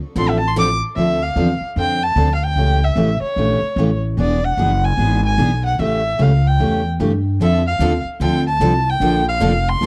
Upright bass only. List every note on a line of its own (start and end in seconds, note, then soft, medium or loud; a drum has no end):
0.15 0.80 A1 medium
0.96 1.35 D2 medium
1.36 1.59 E2 medium
1.61 muted upright bass stroke soft
1.76 2.15 F2 medium
2.16 2.55 D2 loud
2.56 2.95 C#2 medium
2.96 3.20 A1 medium
3.21 muted upright bass stroke soft
3.36 3.60 A#1 medium
3.62 muted upright bass stroke soft
3.76 4.16 A1 medium
4.17 4.57 E1 medium
4.57 4.97 F#1 medium
4.97 5.37 G#1 medium
5.38 5.77 B1 loud
5.79 6.18 A1 medium
6.19 6.58 C#2 medium
6.59 6.98 E2 medium
7.00 7.39 G2 medium
7.40 7.79 F2 medium
7.79 8.03 D#2 medium
8.05 muted upright bass stroke soft
8.20 8.59 D2 medium
8.60 8.99 C2 medium
9.00 9.39 A#1 medium
9.41 9.80 F1 medium
9.81 9.86 G1 medium